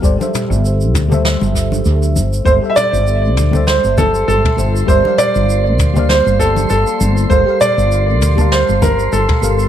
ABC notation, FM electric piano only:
X:1
M:4/4
L:1/16
Q:"Swing 16ths" 1/4=99
K:Cmix
V:1 name="FM electric piano"
[G,GAcd] [G,GAce]6 [G,GAce]8- [G,GAce] | [G,GAce] [G,GAce]6 [G,GAce]6- [G,GAce] [G,GAce]2 | [G,GBcde] [G,GBcdf]6 [G,B,Gcdf]8- [G,B,Gcdf] | [G,GABf] [G,GABf]6 [G,GBfa]6- [G,GBfa] [G,GABf]2 |]